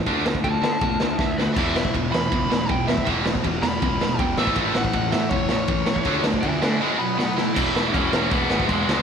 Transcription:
0.06 picked electric bass D2, distorted electric guitar D3 A3 D4, kick, ride
0.25 distorted electric guitar D3 A3, snare
0.35 kick
0.44 picked electric bass D2, distorted electric guitar D3 A3, overdriven electric guitar A5, kick, ride
0.62 picked electric bass D3, distorted electric guitar D3 A3, snare
0.81 picked electric bass B1, distorted electric guitar D3 A3, kick, ride
1.00 picked electric bass D2, distorted electric guitar D3 A3, snare
1.18 picked electric bass D2, distorted electric guitar D3 A3, overdriven electric guitar E5, kick, snare
1.38 distorted electric guitar D3 A3, overdriven electric guitar B4, snare
1.53 picked electric bass E1, overdriven electric guitar E4, kick, crash
1.58 distorted electric guitar E2 B2 E3
1.76 distorted electric guitar E2 B2, snare
1.85 kick
1.94 picked electric bass E1, distorted electric guitar E2 B2, kick, ride
2.12 picked electric bass E2, distorted electric guitar E2 B2, overdriven electric guitar B5, snare
2.32 picked electric bass C#2, distorted electric guitar E2 B2, kick, ride
2.49 picked electric bass E1, distorted electric guitar E2 B2, snare
2.69 picked electric bass E1, distorted electric guitar E2 B2, overdriven electric guitar G5, kick, ride
2.88 distorted electric guitar E2 B2, overdriven electric guitar E5, snare
2.98 kick
3.06 picked electric bass E1, distorted electric guitar E2 B2 E3, kick, ride
3.26 distorted electric guitar E2 B2, snare
3.35 kick
3.44 picked electric bass E1, distorted electric guitar E2 B2, kick, ride
3.62 picked electric bass E2, distorted electric guitar E2 B2, overdriven electric guitar B5, snare
3.82 picked electric bass C#2, distorted electric guitar E2 B2, kick, ride
4.00 picked electric bass E1, distorted electric guitar E2 B2, snare
4.18 picked electric bass E1, distorted electric guitar E2 B2, overdriven electric guitar G5, kick, ride
4.37 picked electric bass A1, distorted electric guitar A2 E3 A3, overdriven electric guitar E5, snare
4.47 kick
4.55 picked electric bass A1, distorted electric guitar A2 E3 A3, kick, ride
4.75 distorted electric guitar A2 E3, overdriven electric guitar F#5, snare
4.85 kick
4.93 picked electric bass A1, distorted electric guitar A2 E3, kick, ride
5.12 distorted electric guitar A2 E3, picked electric bass A2, overdriven electric guitar E5, snare
5.29 picked electric bass F#1, distorted electric guitar A2 E3, overdriven electric guitar C#5, kick, ride
5.49 picked electric bass A1, distorted electric guitar A2 E3, overdriven electric guitar C#5, snare
5.68 picked electric bass A1, distorted electric guitar A2 E3, kick, ride
5.87 distorted electric guitar A2 E3, snare
5.96 kick
6.05 picked electric bass D2, distorted electric guitar D3 A3 D4, kick, ride
6.24 distorted electric guitar D3 A3, snare
6.34 kick
6.41 picked electric bass D2, distorted electric guitar D3 A3, overdriven electric guitar E5 G#5, kick, ride
6.62 distorted electric guitar D3 A3, picked electric bass D3, overdriven electric guitar E5 G#5, snare
6.80 distorted electric guitar B2 F#3 B3, overdriven electric guitar D#5 G#5
6.99 distorted electric guitar B2 F#3, overdriven electric guitar F#5 B5
7.18 distorted electric guitar B2 F#3, overdriven electric guitar F#5 B5, snare
7.38 distorted electric guitar B2 F#3, overdriven electric guitar E4 G#5, snare
7.56 picked electric bass E1, distorted electric guitar E2 B2 E3, kick, crash
7.76 picked electric bass E1, distorted electric guitar E2 B2 E3, snare
7.93 picked electric bass E1, distorted electric guitar E2 B2 E3, overdriven electric guitar C#4, kick, crash
8.12 picked electric bass E1, distorted electric guitar E2 B2 E3, snare
8.30 picked electric bass E1, distorted electric guitar E2 B2 E3, overdriven electric guitar B3, kick, crash
8.50 picked electric bass G#1, distorted electric guitar E2 B2 E3, snare
8.60 kick
8.67 picked electric bass E1, distorted electric guitar E2 B2 E3, overdriven electric guitar G#3, kick, crash
8.88 picked electric bass C#2, distorted electric guitar E2 B2 E3, snare

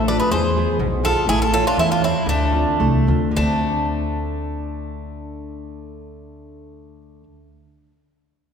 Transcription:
Already playing: upright bass A1, nylon-string guitar A3
0.08 nylon-string guitar D4 F4 A4, bouzouki B4 D5
0.20 bouzouki G#4 B4
0.31 upright bass E2, nylon-string guitar E3, bouzouki G#4 C5
0.56 nylon-string guitar B3 E4 G#4
0.79 upright bass B1, nylon-string guitar B2
1.03 nylon-string guitar B3 E4 G#4, bouzouki F4 A4
1.27 upright bass A1, nylon-string guitar A3, bouzouki E4 G#4
1.42 bouzouki F4 A4
1.52 nylon-string guitar E4 A4 C#5, bouzouki F4 A4
1.67 bouzouki D4 F4
1.77 upright bass E2, nylon-string guitar E3, bouzouki E4
1.81 bouzouki C#4
1.91 bouzouki D4 F4
2.00 nylon-string guitar E4 A4 C#5, bouzouki E4
2.05 bouzouki C4
2.26 upright bass D2, nylon-string guitar D3, bouzouki A3 D4
2.52 nylon-string guitar C4 D4 F4
2.80 upright bass C2, nylon-string guitar A3
3.07 upright bass D2, nylon-string guitar C4 D4 F4
3.31 nylon-string guitar D3
3.36 upright bass D2, nylon-string guitar A3, bouzouki A3 D4
3.41 nylon-string guitar C4

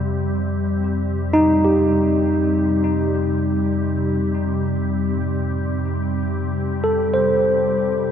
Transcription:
Already playing: sub bass F2, synth drone C3 G3, tine electric piano G4
1.33 tine electric piano D#4
1.65 tine electric piano G4
6.84 tine electric piano A4
7.14 tine electric piano C5

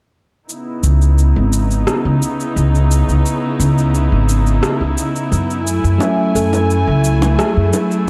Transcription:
0.49 string section C#3 B3 D#4 E4, cabasa
0.83 upright bass C#2, cabasa
1.02 cabasa
1.18 cabasa
1.36 upright bass G#1
1.53 cabasa
1.71 cabasa
1.87 cross-stick, cabasa
2.05 upright bass C#2
2.22 cabasa
2.40 cabasa
2.56 upright bass C#2, cabasa
2.75 cabasa
2.91 cabasa
3.09 upright bass C#2, cabasa
3.26 cabasa
3.60 upright bass C#2, cabasa
3.78 cabasa
3.95 cabasa
4.12 upright bass G#1
4.29 cabasa
4.47 cabasa
4.63 cross-stick, cabasa
4.81 upright bass C#2
4.98 cabasa
5.16 cabasa
5.32 upright bass F#2, cabasa
5.51 cabasa
5.66 string section F#3 A3 G#5, cabasa
5.84 upright bass F#2, cabasa
5.98 fm electric piano F#3 A3 C#4 G#5, kalimba C#4, high bongo, cabasa
6.03 fm electric piano E5
6.35 upright bass F#2, kalimba A4, cabasa
6.53 high bongo, cabasa
6.70 cabasa
6.87 upright bass C#2
7.04 cabasa
7.22 high bongo, cabasa
7.39 kalimba G#4, cross-stick, cabasa
7.57 upright bass F#2
7.73 high bongo, cabasa
7.91 cabasa

